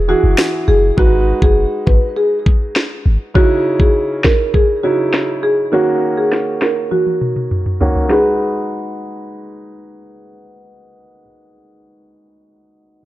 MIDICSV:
0, 0, Header, 1, 5, 480
1, 0, Start_track
1, 0, Key_signature, 5, "minor"
1, 0, Tempo, 594059
1, 789, Time_signature, 4, 2, 24, 8
1, 10544, End_track
2, 0, Start_track
2, 0, Title_t, "Marimba"
2, 0, Program_c, 0, 12
2, 71, Note_on_c, 0, 66, 80
2, 149, Note_off_c, 0, 66, 0
2, 548, Note_on_c, 0, 68, 89
2, 627, Note_off_c, 0, 68, 0
2, 790, Note_on_c, 0, 66, 96
2, 868, Note_off_c, 0, 66, 0
2, 1149, Note_on_c, 0, 68, 81
2, 1306, Note_off_c, 0, 68, 0
2, 1508, Note_on_c, 0, 71, 87
2, 1665, Note_off_c, 0, 71, 0
2, 1749, Note_on_c, 0, 68, 93
2, 2088, Note_off_c, 0, 68, 0
2, 2709, Note_on_c, 0, 66, 97
2, 2787, Note_off_c, 0, 66, 0
2, 3071, Note_on_c, 0, 68, 71
2, 3227, Note_off_c, 0, 68, 0
2, 3427, Note_on_c, 0, 70, 83
2, 3584, Note_off_c, 0, 70, 0
2, 3667, Note_on_c, 0, 68, 76
2, 3746, Note_off_c, 0, 68, 0
2, 3906, Note_on_c, 0, 66, 74
2, 3985, Note_off_c, 0, 66, 0
2, 4388, Note_on_c, 0, 68, 89
2, 4467, Note_off_c, 0, 68, 0
2, 4628, Note_on_c, 0, 66, 91
2, 4707, Note_off_c, 0, 66, 0
2, 4989, Note_on_c, 0, 68, 76
2, 5145, Note_off_c, 0, 68, 0
2, 5348, Note_on_c, 0, 70, 83
2, 5505, Note_off_c, 0, 70, 0
2, 5586, Note_on_c, 0, 66, 88
2, 5926, Note_off_c, 0, 66, 0
2, 6547, Note_on_c, 0, 68, 81
2, 7956, Note_off_c, 0, 68, 0
2, 10544, End_track
3, 0, Start_track
3, 0, Title_t, "Grand piano"
3, 0, Program_c, 1, 0
3, 0, Control_c, 1, 64, 127
3, 0, Note_on_c, 1, 52, 64
3, 0, Note_on_c, 1, 64, 62
3, 0, Note_on_c, 1, 66, 61
3, 0, Note_on_c, 1, 68, 76
3, 66, Note_off_c, 1, 52, 0
3, 66, Note_on_c, 1, 52, 50
3, 69, Note_off_c, 1, 64, 0
3, 69, Note_on_c, 1, 64, 45
3, 72, Note_off_c, 1, 66, 0
3, 72, Note_on_c, 1, 66, 48
3, 75, Note_off_c, 1, 68, 0
3, 75, Note_on_c, 1, 68, 58
3, 781, Note_off_c, 1, 66, 0
3, 783, Note_on_c, 1, 56, 69
3, 788, Note_off_c, 1, 52, 0
3, 788, Note_on_c, 1, 63, 61
3, 789, Note_off_c, 1, 64, 0
3, 792, Note_off_c, 1, 68, 0
3, 793, Note_on_c, 1, 66, 63
3, 799, Control_c, 1, 64, 0
3, 800, Note_on_c, 1, 71, 76
3, 933, Control_c, 1, 64, 127
3, 2674, Note_off_c, 1, 56, 0
3, 2677, Note_off_c, 1, 63, 0
3, 2679, Note_off_c, 1, 66, 0
3, 2682, Note_off_c, 1, 71, 0
3, 2700, Note_on_c, 1, 49, 69
3, 2706, Note_on_c, 1, 61, 61
3, 2712, Note_on_c, 1, 63, 62
3, 2717, Note_on_c, 1, 64, 75
3, 2720, Control_c, 1, 64, 0
3, 2866, Control_c, 1, 64, 127
3, 3881, Note_off_c, 1, 49, 0
3, 3884, Note_off_c, 1, 61, 0
3, 3887, Note_off_c, 1, 63, 0
3, 3890, Note_off_c, 1, 64, 0
3, 3906, Note_on_c, 1, 49, 52
3, 3908, Note_on_c, 1, 61, 47
3, 3911, Note_on_c, 1, 63, 47
3, 3915, Note_on_c, 1, 64, 59
3, 4620, Note_off_c, 1, 61, 0
3, 4620, Note_on_c, 1, 51, 66
3, 4627, Note_on_c, 1, 58, 58
3, 4628, Note_off_c, 1, 49, 0
3, 4630, Note_off_c, 1, 63, 0
3, 4632, Note_off_c, 1, 64, 0
3, 4633, Note_on_c, 1, 61, 61
3, 4638, Note_on_c, 1, 66, 75
3, 4640, Control_c, 1, 64, 0
3, 4775, Control_c, 1, 64, 127
3, 6273, Note_off_c, 1, 51, 0
3, 6276, Note_off_c, 1, 58, 0
3, 6279, Note_off_c, 1, 61, 0
3, 6282, Note_off_c, 1, 66, 0
3, 6306, Note_on_c, 1, 51, 57
3, 6309, Note_on_c, 1, 58, 49
3, 6312, Note_on_c, 1, 61, 52
3, 6315, Note_on_c, 1, 66, 61
3, 6532, Note_on_c, 1, 56, 80
3, 6544, Note_off_c, 1, 66, 0
3, 6544, Note_on_c, 1, 63, 71
3, 6548, Note_off_c, 1, 51, 0
3, 6549, Note_off_c, 1, 58, 0
3, 6551, Note_off_c, 1, 61, 0
3, 6556, Note_on_c, 1, 66, 77
3, 6561, Control_c, 1, 64, 0
3, 6568, Note_on_c, 1, 71, 87
3, 6683, Control_c, 1, 64, 127
3, 9056, Note_off_c, 1, 56, 0
3, 9068, Note_off_c, 1, 63, 0
3, 9080, Note_off_c, 1, 66, 0
3, 9092, Note_off_c, 1, 71, 0
3, 10501, Control_c, 1, 64, 0
3, 10544, End_track
4, 0, Start_track
4, 0, Title_t, "808-style bass"
4, 0, Program_c, 2, 38
4, 0, Note_on_c, 2, 28, 93
4, 116, Note_off_c, 2, 28, 0
4, 190, Note_on_c, 2, 30, 96
4, 285, Note_off_c, 2, 30, 0
4, 549, Note_on_c, 2, 30, 101
4, 740, Note_off_c, 2, 30, 0
4, 790, Note_on_c, 2, 32, 114
4, 1076, Note_off_c, 2, 32, 0
4, 1148, Note_on_c, 2, 30, 91
4, 1339, Note_off_c, 2, 30, 0
4, 1512, Note_on_c, 2, 32, 89
4, 1606, Note_off_c, 2, 32, 0
4, 2470, Note_on_c, 2, 32, 88
4, 2565, Note_off_c, 2, 32, 0
4, 10544, End_track
5, 0, Start_track
5, 0, Title_t, "Drums"
5, 310, Note_on_c, 9, 38, 113
5, 391, Note_off_c, 9, 38, 0
5, 790, Note_on_c, 9, 36, 102
5, 871, Note_off_c, 9, 36, 0
5, 1148, Note_on_c, 9, 36, 94
5, 1228, Note_off_c, 9, 36, 0
5, 1512, Note_on_c, 9, 36, 89
5, 1593, Note_off_c, 9, 36, 0
5, 1990, Note_on_c, 9, 36, 105
5, 2071, Note_off_c, 9, 36, 0
5, 2231, Note_on_c, 9, 38, 114
5, 2311, Note_off_c, 9, 38, 0
5, 2710, Note_on_c, 9, 36, 100
5, 2790, Note_off_c, 9, 36, 0
5, 3067, Note_on_c, 9, 36, 96
5, 3148, Note_off_c, 9, 36, 0
5, 3429, Note_on_c, 9, 38, 101
5, 3432, Note_on_c, 9, 36, 87
5, 3510, Note_off_c, 9, 38, 0
5, 3512, Note_off_c, 9, 36, 0
5, 3669, Note_on_c, 9, 36, 82
5, 3750, Note_off_c, 9, 36, 0
5, 4151, Note_on_c, 9, 38, 110
5, 4231, Note_off_c, 9, 38, 0
5, 5111, Note_on_c, 9, 38, 66
5, 5192, Note_off_c, 9, 38, 0
5, 5349, Note_on_c, 9, 38, 105
5, 5430, Note_off_c, 9, 38, 0
5, 5589, Note_on_c, 9, 48, 52
5, 5670, Note_off_c, 9, 48, 0
5, 5710, Note_on_c, 9, 48, 53
5, 5791, Note_off_c, 9, 48, 0
5, 5829, Note_on_c, 9, 47, 71
5, 5910, Note_off_c, 9, 47, 0
5, 5949, Note_on_c, 9, 47, 62
5, 6030, Note_off_c, 9, 47, 0
5, 6069, Note_on_c, 9, 45, 82
5, 6150, Note_off_c, 9, 45, 0
5, 6189, Note_on_c, 9, 45, 76
5, 6270, Note_off_c, 9, 45, 0
5, 6308, Note_on_c, 9, 43, 94
5, 6389, Note_off_c, 9, 43, 0
5, 6429, Note_on_c, 9, 43, 81
5, 6509, Note_off_c, 9, 43, 0
5, 6549, Note_on_c, 9, 38, 97
5, 6630, Note_off_c, 9, 38, 0
5, 10544, End_track
0, 0, End_of_file